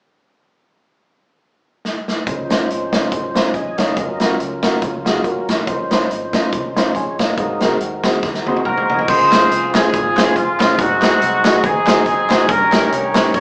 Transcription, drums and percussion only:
1.85 snare medium
2.08 snare medium
2.27 kick loud
2.27 closed hi-hat medium
2.50 snare loud
2.50 closed hi-hat medium
2.70 closed hi-hat medium
2.93 kick medium
2.93 snare loud
2.93 closed hi-hat medium
3.12 kick loud
3.12 closed hi-hat medium
3.36 snare loud
3.36 closed hi-hat medium
3.54 kick medium
3.54 closed hi-hat medium
3.78 kick medium
3.78 snare loud
3.78 closed hi-hat medium
3.97 kick loud
3.97 closed hi-hat medium
4.20 snare loud
4.20 closed hi-hat medium
4.40 closed hi-hat medium
4.63 kick medium
4.63 snare loud
4.63 closed hi-hat medium
4.82 kick loud
4.82 closed hi-hat medium
5.06 snare loud
5.06 closed hi-hat medium
5.24 kick medium
5.24 closed hi-hat medium
5.48 kick medium
5.48 snare loud
5.48 closed hi-hat medium
5.67 kick loud
5.67 closed hi-hat medium
5.91 snare loud
5.91 closed hi-hat medium
6.11 closed hi-hat medium
6.33 kick medium
6.33 snare loud
6.33 closed hi-hat medium
6.52 kick medium
6.52 closed hi-hat medium
6.77 snare loud
6.77 closed hi-hat medium
6.95 kick medium
6.95 closed hi-hat medium
7.19 kick medium
7.19 snare loud
7.19 closed hi-hat medium
7.38 kick loud
7.38 closed hi-hat medium
7.60 snare medium
7.60 closed hi-hat medium
7.80 closed hi-hat medium
8.04 kick medium
8.04 snare loud
8.04 closed hi-hat medium
8.23 kick loud
8.23 snare soft
8.34 snare medium
8.47 high tom medium
8.57 high tom medium
8.65 kick medium
8.65 mid tom medium
8.78 mid tom medium
8.90 floor tom medium
8.99 floor tom medium
9.08 kick loud
9.08 crash loud
9.32 snare loud
9.32 clap loud
9.32 closed hi-hat medium
9.51 closed hi-hat medium
9.75 snare loud
9.75 clap loud
9.75 closed hi-hat medium
9.94 kick loud
9.94 closed hi-hat medium
10.17 snare loud
10.17 clap loud
10.17 closed hi-hat medium
10.36 kick medium
10.36 closed hi-hat medium
10.60 kick medium
10.60 snare loud
10.60 clap medium
10.60 closed hi-hat medium
10.79 kick loud
10.79 closed hi-hat loud
11.02 snare loud
11.02 clap medium
11.02 closed hi-hat medium
11.22 closed hi-hat medium
11.45 snare loud
11.45 clap loud
11.45 closed hi-hat medium
11.64 kick loud
11.64 closed hi-hat medium
11.87 snare loud
11.87 clap loud
11.87 closed hi-hat medium
12.06 kick medium
12.06 closed hi-hat medium
12.30 kick medium
12.30 snare loud
12.30 clap medium
12.30 closed hi-hat medium
12.49 kick loud
12.49 closed hi-hat medium
12.72 snare loud
12.72 clap loud
12.72 closed hi-hat medium
12.92 closed hi-hat medium
13.15 snare loud
13.15 clap loud
13.15 closed hi-hat medium
13.34 kick loud
13.34 closed hi-hat medium

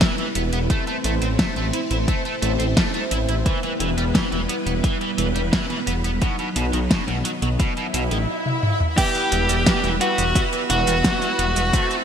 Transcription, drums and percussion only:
0.01 kick loud
0.01 snare loud
0.01 closed hi-hat medium
0.18 closed hi-hat soft
0.35 closed hi-hat medium
0.53 closed hi-hat soft
0.70 kick loud
0.70 closed hi-hat soft
0.87 closed hi-hat soft
1.04 closed hi-hat medium
1.22 closed hi-hat soft
1.39 kick loud
1.39 snare loud
1.39 closed hi-hat medium
1.56 closed hi-hat soft
1.73 closed hi-hat medium
1.91 closed hi-hat medium
2.08 kick loud
2.08 closed hi-hat medium
2.25 closed hi-hat soft
2.42 closed hi-hat medium
2.60 closed hi-hat soft
2.77 kick loud
2.77 snare loud
2.77 closed hi-hat medium
2.94 closed hi-hat soft
3.11 closed hi-hat medium
3.29 closed hi-hat soft
3.46 kick loud
3.46 closed hi-hat medium
3.63 closed hi-hat soft
3.80 closed hi-hat medium
3.98 closed hi-hat medium
4.15 kick loud
4.15 snare loud
4.15 closed hi-hat soft
4.32 closed hi-hat soft
4.49 closed hi-hat medium
4.67 closed hi-hat medium
4.84 kick loud
4.84 closed hi-hat medium
5.01 closed hi-hat soft
5.18 closed hi-hat medium
5.36 closed hi-hat medium
5.53 kick loud
5.53 snare loud
5.53 closed hi-hat medium
5.70 closed hi-hat soft
5.87 closed hi-hat medium
6.04 closed hi-hat medium
6.22 kick loud
6.22 closed hi-hat medium
6.39 closed hi-hat soft
6.56 closed hi-hat medium
6.73 closed hi-hat medium
6.91 kick loud
6.91 snare loud
6.91 closed hi-hat medium
7.08 closed hi-hat soft
7.25 closed hi-hat medium
7.42 closed hi-hat medium
7.60 kick loud
7.60 closed hi-hat medium
7.77 closed hi-hat soft
7.94 closed hi-hat medium
8.11 closed hi-hat medium
8.46 high tom medium
8.63 mid tom medium
8.80 mid tom medium
8.98 kick loud
8.98 closed hi-hat medium
8.98 crash loud
8.98 cabasa medium
9.15 closed hi-hat soft
9.15 cabasa soft
9.32 closed hi-hat loud
9.49 closed hi-hat medium
9.49 cabasa medium
9.66 kick loud
9.66 snare loud
9.66 closed hi-hat medium
9.66 cabasa medium
9.84 closed hi-hat soft
9.84 cabasa soft
10.01 closed hi-hat loud
10.18 closed hi-hat medium
10.18 cabasa medium
10.35 kick loud
10.35 closed hi-hat medium
10.35 cabasa medium
10.53 closed hi-hat soft
10.53 cabasa soft
10.70 closed hi-hat loud
10.87 closed hi-hat medium
10.87 cabasa medium
11.04 kick loud
11.04 snare loud
11.04 closed hi-hat medium
11.04 cabasa soft
11.22 closed hi-hat soft
11.22 cabasa soft
11.39 closed hi-hat loud
11.56 closed hi-hat medium
11.56 cabasa medium
11.73 kick loud
11.73 closed hi-hat medium
11.73 cabasa soft
11.91 closed hi-hat soft
11.91 cabasa soft

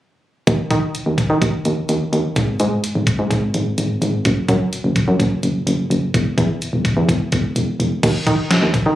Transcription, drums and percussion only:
0.47 kick medium
0.47 closed hi-hat medium
0.71 kick medium
0.71 closed hi-hat medium
0.95 closed hi-hat medium
1.18 kick medium
1.18 closed hi-hat medium
1.42 kick medium
1.42 closed hi-hat medium
1.65 closed hi-hat medium
1.89 closed hi-hat medium
2.13 closed hi-hat medium
2.36 kick loud
2.36 closed hi-hat medium
2.60 closed hi-hat medium
2.84 closed hi-hat medium
3.07 kick medium
3.07 closed hi-hat medium
3.31 kick medium
3.31 closed hi-hat medium
3.54 closed hi-hat medium
3.78 closed hi-hat medium
4.02 closed hi-hat medium
4.25 kick loud
4.25 closed hi-hat medium
4.49 kick medium
4.49 closed hi-hat medium
4.73 closed hi-hat medium
4.96 kick medium
4.96 closed hi-hat medium
5.20 kick medium
5.20 closed hi-hat medium
5.43 closed hi-hat medium
5.67 closed hi-hat medium
5.91 closed hi-hat medium
6.14 kick loud
6.14 closed hi-hat medium
6.38 kick medium
6.38 closed hi-hat medium
6.62 closed hi-hat medium
6.85 kick medium
6.85 closed hi-hat medium
7.09 kick medium
7.09 closed hi-hat medium
7.32 kick loud
7.32 closed hi-hat medium
7.56 closed hi-hat medium
7.80 closed hi-hat medium
8.03 kick loud
8.03 closed hi-hat medium
8.03 crash medium
8.27 kick medium
8.27 closed hi-hat medium
8.51 snare loud
8.51 closed hi-hat medium
8.74 kick loud
8.74 closed hi-hat medium

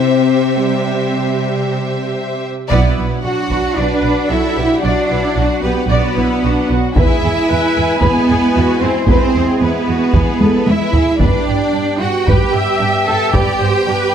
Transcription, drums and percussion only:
2.71 taiko soft
3.50 taiko soft
6.96 taiko medium
8.02 taiko medium
9.07 taiko medium
10.14 taiko medium
10.40 taiko high medium
10.67 taiko high medium
10.94 taiko low medium
11.20 taiko medium
12.28 taiko medium
13.33 taiko medium

